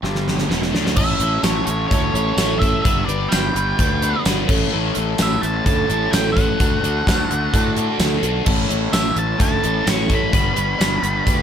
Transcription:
0.03 fingered electric bass G1, overdriven electric guitar G2 D3 G3, snare
0.15 snare
0.28 snare
0.38 snare
0.49 fingered electric bass E1, overdriven electric guitar E2 B2 E3, snare
0.62 snare
0.72 fingered electric bass D2, overdriven electric guitar D3 A3 D4, snare
0.86 snare
0.96 fingered electric bass A1, overdriven electric guitar A3 C#4 E4 A4, lead electric guitar E5, kick, crash
1.19 fingered electric bass A1, overdriven electric guitar A3 C#4 E4 A4, closed hi-hat
1.43 fingered electric bass A1, overdriven electric guitar A3 C#4 E4 A4, lead electric guitar C#5, snare, closed hi-hat, tambourine
1.66 fingered electric bass A1, overdriven electric guitar A3 C#4 E4, lead electric guitar C#5, closed hi-hat
1.70 overdriven electric guitar A4
1.88 lead electric guitar C#5, kick, closed hi-hat
1.92 fingered electric bass D2, overdriven electric guitar A3 C#4 E4 A4
2.14 fingered electric bass A1, overdriven electric guitar A3 C#4 E4 A4, closed hi-hat
2.37 fingered electric bass A1, overdriven electric guitar A3 C#4 E4 A4, snare, closed hi-hat, tambourine
2.59 overdriven electric guitar A3 C#4 E4 A4, lead electric guitar E5, kick, closed hi-hat
2.82 fingered electric bass G1, overdriven electric guitar G3 B3 D4 B4, lead electric guitar E5, kick, closed hi-hat
3.05 fingered electric bass G1, overdriven electric guitar G3 B3 D4 B4, lead electric guitar D5, closed hi-hat
3.29 fingered electric bass G1, overdriven electric guitar G3 B3 D4 B4, lead electric guitar G5, snare, closed hi-hat, tambourine
3.54 fingered electric bass G1, overdriven electric guitar G3 B3 D4 B4, closed hi-hat
3.79 fingered electric bass D2, overdriven electric guitar G3 B3 D4 B4, kick, closed hi-hat
4.02 overdriven electric guitar G3 B3 D4 B4, closed hi-hat
4.25 fingered electric bass G1, overdriven electric guitar G3 B3 D4 B4, snare, closed hi-hat, tambourine
4.47 fingered electric bass A1, overdriven electric guitar A2 A3 C#4 E4 A4, kick, crash
4.72 fingered electric bass A1, overdriven electric guitar A2 A3 C#4 E4 A4
4.95 fingered electric bass A1, overdriven electric guitar A2 A3 C#4 E4 A4, closed hi-hat
5.18 fingered electric bass A1, overdriven electric guitar A2 A3 C#4 E4 A4, lead electric guitar E5, snare, closed hi-hat, tambourine
5.41 fingered electric bass A1, overdriven electric guitar A2 A3 C#4 E4 A4, lead electric guitar A5, closed hi-hat
5.66 fingered electric bass D2, overdriven electric guitar A2 A3 C#4 E4 A4, lead electric guitar A5, kick, closed hi-hat
5.88 fingered electric bass A1, overdriven electric guitar A2 A3 C#4 E4 A4, closed hi-hat
6.11 fingered electric bass A1, overdriven electric guitar A2 A3 C#4 E4 A4, lead electric guitar G5, snare, closed hi-hat, tambourine
6.32 lead electric guitar F#5
6.36 overdriven electric guitar A2 A3 C#4 E4 A4, kick, closed hi-hat
6.59 fingered electric bass D2, overdriven electric guitar D3 D4 F#4 A4, kick, closed hi-hat
6.83 fingered electric bass D2, overdriven electric guitar D3 D4 F#4 A4, closed hi-hat
7.07 fingered electric bass D2, overdriven electric guitar D3 D4 F#4 A4, kick, snare, closed hi-hat, tambourine
7.30 fingered electric bass D2, overdriven electric guitar D3 D4 F#4 A4, closed hi-hat
7.54 fingered electric bass A2, overdriven electric guitar D3 D4 F#4 A4, kick, closed hi-hat
7.76 overdriven electric guitar D3 D4 F#4 A4, closed hi-hat
7.99 fingered electric bass D2, overdriven electric guitar D3 D4 F#4 A4, snare, closed hi-hat, tambourine
8.22 fingered electric bass B1, overdriven electric guitar D3 D4 F#4 A4, closed hi-hat
8.45 fingered electric bass A1, overdriven electric guitar A2 E3 A3 C#4 E4 A4, kick, crash
8.68 fingered electric bass A1, overdriven electric guitar A2 E3 A3 C#4 E4 A4, closed hi-hat
8.91 fingered electric bass A1, overdriven electric guitar A2 E3 A3 C#4 E4 A4, lead electric guitar E5, snare, closed hi-hat, tambourine
9.14 fingered electric bass A1, overdriven electric guitar A2 E3 A3 C#4 E4 A4, closed hi-hat
9.18 lead electric guitar A5
9.37 fingered electric bass D2, overdriven electric guitar A2 E3 A3 C#4 E4 A4, kick, closed hi-hat
9.42 lead electric guitar A5
9.62 fingered electric bass A1, overdriven electric guitar A2 E3 A3 C#4 E4 A4, closed hi-hat
9.84 fingered electric bass A1, overdriven electric guitar A2 E3 A3 C#4 E4 A4, snare, closed hi-hat, tambourine
9.90 lead electric guitar C#6
10.09 overdriven electric guitar A2 E3 A3 C#4 E4 A4, kick, closed hi-hat
10.15 lead electric guitar B5
10.32 fingered electric bass G1, overdriven electric guitar G3 B3 D4 B4, kick, closed hi-hat
10.55 fingered electric bass G1, overdriven electric guitar G3 B3 D4 B4, closed hi-hat
10.78 fingered electric bass G1, overdriven electric guitar G3 B3 D4 B4, snare, closed hi-hat, tambourine
11.02 fingered electric bass G1, overdriven electric guitar G3 B3 D4 B4, closed hi-hat
11.24 fingered electric bass D2, overdriven electric guitar G3 B3 D4 B4, kick, closed hi-hat

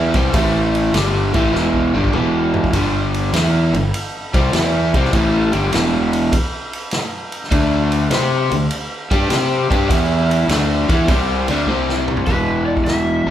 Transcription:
Already playing: fingered electric bass E2, overdriven electric guitar E3 B3 E4
0.14 fingered electric bass C2, overdriven electric guitar C3 G3 C4, kick, ride
0.33 fingered electric bass A1, overdriven electric guitar A2 E3 A3, kick, ride
0.75 ride
0.93 fingered electric bass G1, overdriven electric guitar G2 D3 G3, snare, ride
1.34 fingered electric bass A1, overdriven electric guitar A2 E3 A3, kick, ride
1.53 fingered electric bass E1, overdriven electric guitar E2 B2 E3, snare
1.74 kick
1.94 fingered electric bass G1, overdriven electric guitar G2 D3 G3
2.04 kick
2.13 fingered electric bass E1, overdriven electric guitar E2 B2 E3, mid tom
2.54 floor tom
2.64 kick
2.73 fingered electric bass G1, overdriven electric guitar G2 D3 G3, kick, ride
3.14 ride
3.32 fingered electric bass E2, overdriven electric guitar E3 B3 E4, snare, ride
3.73 fingered electric bass G1, overdriven electric guitar G2 D3, ride
3.94 ride
4.34 fingered electric bass C2, overdriven electric guitar C3 G3 C4, kick, ride
4.53 fingered electric bass E2, overdriven electric guitar E3 B3 E4, snare, ride
4.94 fingered electric bass C2, overdriven electric guitar C3 G3 C4, kick, ride
5.05 snare
5.12 fingered electric bass A1, overdriven electric guitar A2 E3 A3, kick, ride
5.52 fingered electric bass G1, overdriven electric guitar G2 D3 G3, ride
5.71 fingered electric bass E1, overdriven electric guitar E2 B2 E3, snare, ride
6.13 ride
6.32 kick, ride
6.73 ride
6.91 snare, ride
7.32 ride
7.44 snare
7.51 fingered electric bass D2, overdriven electric guitar D3 A3 D4, kick, ride
7.92 ride
8.10 fingered electric bass C3, overdriven electric guitar C4 G4 C5, snare, ride
8.51 fingered electric bass D2, overdriven electric guitar D3 A3, ride
8.71 ride
9.11 fingered electric bass G2, overdriven electric guitar G3 D4 G4, kick, ride
9.30 fingered electric bass C3, overdriven electric guitar C4 G4 C5, snare, ride
9.70 fingered electric bass G2, overdriven electric guitar G3 D4 G4, kick, ride
9.88 fingered electric bass E2, overdriven electric guitar E3 B3 E4, kick, ride
10.31 ride
10.48 fingered electric bass D2, overdriven electric guitar D3 A3 D4, snare, ride
10.88 fingered electric bass E2, overdriven electric guitar E3 B3 E4, kick, ride
11.08 fingered electric bass C2, overdriven electric guitar C3 G3 C4, kick, ride
11.48 fingered electric bass D2, overdriven electric guitar D3 A3 D4, ride
11.65 fingered electric bass C2, overdriven electric guitar C3 G3 C4, high tom
11.89 snare
12.08 mid tom
12.17 floor tom
12.26 fingered electric bass E1, overdriven electric guitar E2 B2 E3, electric slide guitar B4, kick, open hi-hat
12.66 electric slide guitar D5
12.77 kick
12.84 electric slide guitar E5, snare, open hi-hat
13.26 fingered electric bass G1, overdriven electric guitar G2

